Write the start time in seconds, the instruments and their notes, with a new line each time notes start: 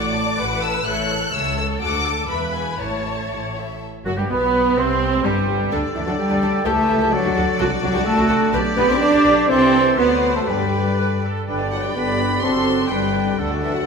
Already playing: double bass section A1, cello section A2, violin section F#4 F#5 D6, viola section D5
0.17 violin section A4 A5
0.39 double bass section A1, cello section A2, violin section F#4 F#5, viola section B4
0.63 violin section A4 A5 E6
0.86 double bass section A1, cello section A2, viola section A4, violin section C#5 E5 F#6
1.11 violin section A4 C#5
1.33 double bass section C#2, cello section C#2, viola section A4, violin section C#5 E5 E6
1.58 violin section A4 C#5 E6
1.82 cello section D2, double bass section D2, violin section F#4 F#5 D6
2.07 violin section A4 A5
2.29 double bass section E1, cello section E2, violin section B4 E5 B5, viola section B4
2.54 violin section G#4 G#5
2.79 double bass section A1, cello section A2, violin section E4 C#5 A5, viola section C#5
3.06 violin section A4 E5
3.31 double bass section A1, cello section A2, violin section E4 C#5
3.57 violin section A4 E5
4.05 double bass section F#1, bassoon F#2, french horn section F#3, cello section F#3, viola section F#3, clarinet F#4, oboe F#4, violin section F#4, flute section F#5
4.17 double bass section G1, bassoon G2, french horn section G3, viola section G3, violin section G3, cello section G3, oboe G4, clarinet G4, flute section G5
4.29 double bass section B1, bassoon B2, french horn section B3, violin section B3, viola section B3, cello section B3, oboe B3, clarinet B4, flute section B5
4.76 double bass section C2, bassoon C3, violin section C4, oboe C4, viola section C4, cello section C4, french horn section C4, clarinet C5, flute section C6
5.24 double bass section G1, bassoon G2, french horn section G3, violin section G3, viola section G3, cello section G3, clarinet G4, oboe G4, flute section G5
5.72 double bass section D2, bassoon D3, viola section D4, oboe A4, violin section A4 D5
5.94 double bass section D2, french horn section E3, cello section E3, viola section D4, violin section D4, clarinet E4, flute section E5
6.06 double bass section D2, french horn section F#3, cello section F#3, viola section D4, clarinet F#4, violin section A4, flute section F#5
6.18 french horn section G3, cello section G3, clarinet G4, flute section G5
6.30 double bass section D2, violin section D4, viola section D4
6.42 double bass section D2, viola section D4, violin section A4
6.65 double bass section C#2, bassoon E3, cello section A3, french horn section A3, viola section G4, oboe G4, clarinet A4, violin section A4 E5, flute section A5
6.89 double bass section C#2, violin section E4, viola section G4
7.01 double bass section C#2, viola section G4, violin section A4
7.12 bassoon D3, cello section F#3, french horn section F#3, clarinet F#4, oboe A4, violin section D5, flute section F#5
7.24 double bass section D2, violin section D4, viola section F#4
7.36 double bass section D2, viola section F#4, violin section A4
7.59 double bass section C2, bassoon D3, oboe F#4, viola section F#4, violin section A4
7.82 double bass section C2, french horn section F#3, cello section F#3, violin section D4, clarinet F#4, viola section F#4, flute section F#5
7.94 double bass section C2, french horn section G3, cello section G3, viola section F#4, clarinet G4, violin section A4, flute section G5
8.05 cello section A3, french horn section A3, clarinet A4, flute section A5
8.18 double bass section C2, violin section D4, viola section F#4
8.29 double bass section C2, viola section F#4, violin section A4
8.53 double bass section B1, viola section G4, oboe G4, violin section B4 D5
8.77 double bass section B1, french horn section B3, cello section B3, violin section D4, viola section G4, clarinet B4, flute section B5
8.88 double bass section B1, french horn section C4, cello section C4, viola section G4, violin section B4, clarinet C5, flute section C6
9.01 french horn section D4, cello section D4, clarinet D5, flute section D6
9.13 double bass section B1, violin section D4, viola section G4
9.25 double bass section B1, viola section G4, violin section B4
9.49 double bass section C2, bassoon E3, french horn section C4, cello section C4, viola section G4, violin section A4 E5, oboe A4, clarinet C5, flute section C6
9.98 double bass section D2, bassoon F#3, cello section B3, french horn section B3, viola section F#4, clarinet B4, oboe C5, violin section C5 D5, flute section B5
10.35 cello section A3, french horn section A3, clarinet A4, flute section A5
10.47 double bass section G2, bassoon D3, cello section G3, french horn section G3, viola section G4, clarinet G4, violin section B4 D5, oboe B4, flute section G5
10.98 viola section B4
11.23 viola section A4
11.48 double bass section G1, cello section G2, bassoon D3, viola section D4 B4, clarinet D4, oboe D5, violin section G5, flute section G5
11.60 viola section G4 D5, violin section D5
11.72 french horn section F#3, viola section D4 B4, violin section F#5 G5
11.84 french horn section G3, viola section G4 D5, violin section D5 G5
11.95 double bass section G1, cello section G2, bassoon D3, french horn section B3, viola section D4 B4, clarinet D4, oboe D5, violin section G5 B5, flute section G5
12.08 viola section G4 D5, violin section D5
12.20 viola section D4 B4, violin section G5
12.32 viola section G4 D5, violin section D5
12.43 double bass section F#1, cello section F#2, bassoon D3, french horn section C4, clarinet D4, viola section F#4 A4, violin section C5 C6, oboe D5, flute section A5
12.55 viola section F#4 A4, violin section D5
12.67 viola section F#4 A4, violin section C5
12.79 viola section F#4 A4, violin section D5
12.90 double bass section G1, cello section G2, bassoon D3, french horn section G3, clarinet D4, viola section D4 B4, oboe B4, violin section G5, flute section G5
13.03 viola section G4 D5, violin section D5
13.14 viola section D4 B4, violin section G5
13.26 viola section G4 D5, violin section D5
13.38 double bass section D2, cello section D3, bassoon D3, clarinet D4, viola section D4 A4, oboe A4, flute section F#5, violin section F#5
13.50 viola section F#4, violin section D5
13.62 french horn section E3, viola section D4 A4, violin section E5 F#5
13.74 french horn section F#3, viola section F#4, violin section D5 F#5